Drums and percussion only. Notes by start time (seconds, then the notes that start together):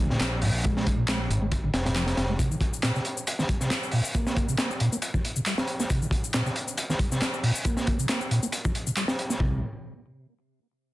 0.10 snare
0.20 snare, clap, closed hi-hat
0.42 open hi-hat
0.64 kick, closed hi-hat
0.77 snare
0.87 kick, closed hi-hat
1.08 snare, clap, closed hi-hat
1.31 closed hi-hat
1.52 kick, closed hi-hat
1.74 snare, closed hi-hat
1.86 snare, closed hi-hat
1.96 snare, clap, closed hi-hat
2.07 snare, closed hi-hat
2.17 snare, closed hi-hat
2.39 kick, closed hi-hat, shaker
2.52 shaker
2.61 kick, closed hi-hat
2.73 shaker
2.83 snare, clap, closed hi-hat, shaker
2.96 snare, shaker
3.05 closed hi-hat
3.17 shaker
3.27 closed hi-hat, shaker
3.39 snare, shaker
3.49 kick, closed hi-hat
3.61 snare, shaker
3.70 snare, clap, closed hi-hat, shaker
3.83 shaker
3.91 open hi-hat
4.05 shaker
4.15 kick, closed hi-hat, shaker
4.27 snare, shaker
4.36 kick, closed hi-hat
4.49 shaker
4.58 snare, clap, closed hi-hat, shaker
4.71 shaker
4.80 closed hi-hat
4.93 shaker
5.02 closed hi-hat, shaker
5.14 kick, shaker
5.25 closed hi-hat
5.36 shaker
5.46 clap, closed hi-hat, shaker
5.58 snare, shaker
5.67 closed hi-hat
5.80 snare, shaker
5.90 kick, closed hi-hat, shaker
6.02 shaker
6.11 kick, closed hi-hat
6.24 shaker
6.33 snare, clap, closed hi-hat, shaker
6.46 snare, shaker
6.56 closed hi-hat
6.68 shaker
6.78 closed hi-hat, shaker
6.90 snare, shaker
6.99 kick, closed hi-hat
7.12 snare, shaker
7.21 snare, clap, closed hi-hat, shaker
7.34 shaker
7.43 open hi-hat
7.56 shaker
7.65 kick, closed hi-hat, shaker
7.77 snare, shaker
7.87 kick, closed hi-hat
7.99 shaker
8.09 snare, clap, closed hi-hat, shaker
8.21 shaker
8.31 closed hi-hat
8.43 shaker
8.52 closed hi-hat, shaker
8.65 kick, shaker
8.75 closed hi-hat
8.87 shaker
8.97 clap, closed hi-hat, shaker
9.08 snare, shaker
9.19 closed hi-hat
9.30 snare, shaker
9.40 kick